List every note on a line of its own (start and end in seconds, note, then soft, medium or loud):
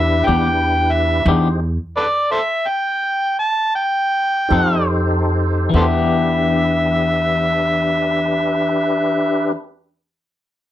0.00 0.23 E2 medium
0.00 1.23 D4 medium
0.00 1.23 E4 medium
0.00 1.23 G4 medium
0.00 1.23 B4 medium
0.00 0.28 E5 medium
0.26 1.23 E2 medium
0.26 0.47 E3 soft
0.26 0.47 B3 medium
0.26 0.47 D4 medium
0.26 0.47 G4 medium
0.26 0.93 G5 medium
0.92 1.26 E5 medium
1.26 1.76 E2 loud
1.26 1.47 E3 medium
1.26 1.47 B3 medium
1.26 1.48 D4 medium
1.26 1.61 D#4 medium
1.26 1.61 G4 medium
1.26 1.48 G4 medium
1.26 1.60 G#4 medium
1.26 1.60 C5 medium
1.97 2.05 A4 medium
1.97 2.05 B4 medium
1.97 2.30 D5 medium
2.31 2.40 A4 medium
2.31 2.38 C5 medium
2.31 2.69 E5 medium
2.67 3.36 G5 loud
3.39 3.74 A5 medium
3.76 4.88 G5 loud
4.48 5.69 F2 medium
4.48 4.75 C4 medium
4.48 5.71 D#4 medium
4.48 4.75 D#4 medium
4.48 5.70 G4 medium
4.48 5.71 A4 medium
4.48 4.75 A4 medium
4.48 5.71 C5 medium
4.53 4.76 F3 medium
5.70 9.55 E2 medium
5.70 9.55 E3 medium
5.70 9.53 D4 medium
5.70 9.52 G4 medium
5.70 9.53 B4 medium
5.75 9.60 B3 medium
5.75 9.63 D4 medium
5.75 5.83 A4 medium
5.75 5.85 C5 medium
5.75 9.57 E5 medium
5.82 9.67 G4 medium